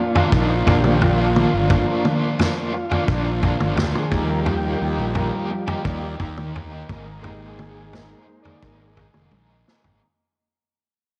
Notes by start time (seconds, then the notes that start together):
Already playing: A#2
0.00 F4
0.15 A#3 D4 F4, floor tom
0.32 A#1 A#2 F3 A#3 D4 D#4 F4, kick
0.49 A#3 D4 F4
0.56 F4
0.66 A#1 F3 A#3 D4 F4, kick, floor tom
0.79 G4
0.84 mid tom
1.00 A#2 F3 A#3 D4 F4, floor tom
1.18 A#3 D4 F4
1.35 F3 A#3 D4 F4, mid tom
1.52 G1 A#3 D4 F4
1.68 A#2 F3 A#3 D4 F4, kick, floor tom
2.04 F3 A#3 D4 F4, mid tom
2.39 snare, floor tom
2.56 A#3 D4 F4
2.73 F4, muted overdriven electric guitar stroke
2.90 A#3 D4 F4, floor tom
3.07 A#1 A#2 F3 A#3 D4 F4, kick
3.24 A#3 D4 F4
3.29 F4
3.41 F3 A#3 D4 F4, kick, floor tom
3.51 F4
3.60 G1, mid tom
3.76 D2 A#2 F3 A#3 D4 F4 G4, snare, floor tom
3.94 A#3 D4 F4, mid tom
3.99 G#4
4.10 D#2 D#3 F3 G3 A#3 D#4, kick, mid tom
4.14 G4
4.24 A#4
4.29 A#3 D#4 G4
4.45 D#3 A#3 D#4 G4, floor tom
4.70 G4
4.80 D#2 D#3 A#3 D#4 G4
4.99 A#1
5.15 floor tom
5.33 A#3 D#4 G4
5.50 muted overdriven electric guitar stroke
5.67 A#3 D#4 G4, floor tom
5.83 D#2 D#3 F3 G3 A#3 D#4 D5, kick
5.88 G4
6.03 A#3 D#4 G4
6.19 D#2 D#3 A#3 D#4 G4, kick, floor tom
6.37 mid tom
6.54 D#3 A#3 D#4 G4, floor tom
6.72 A#3 D#4 G4
6.88 G#1 G#3 A#3 D#4 G#4 A#4, kick, mid tom
7.05 A#3 D#4 G#4
7.22 G#3 A#3 D#4 G4 G#4, floor tom
7.48 G#4
7.56 G#3 A#3 D#4 G#4, mid tom
7.70 G#4
7.93 A#4, snare, floor tom
8.08 A#3 D#4 G#4
8.18 C5
8.26 muted overdriven electric guitar stroke
8.42 A#3 D#4 G#4 D5, floor tom
8.61 G#1 G#3 A#3 D#4 G#4, kick
8.65 A#4
8.79 A#3 D#4 G#4
8.88 G#4
8.97 G#3 A#3 D#4 G#4, kick, floor tom
9.14 F1, mid tom
9.31 A#1 G#3 A#3 D#4 G#4, high tom
9.49 A#3 D#4 G#4
9.66 G#3 A#3 D#4 G#4, snare
9.84 G#1 A#3 D#4 G#4, floor tom